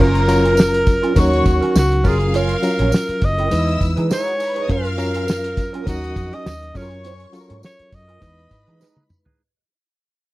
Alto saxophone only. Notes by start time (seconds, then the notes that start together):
0.01 A#4
1.19 F#4
1.78 F#4
2.08 G#4
2.37 A#4
3.25 D#5
4.13 C#5
4.71 A#4
5.89 F#4
6.34 D#5
6.77 C#5
7.65 C#5
7.94 D#5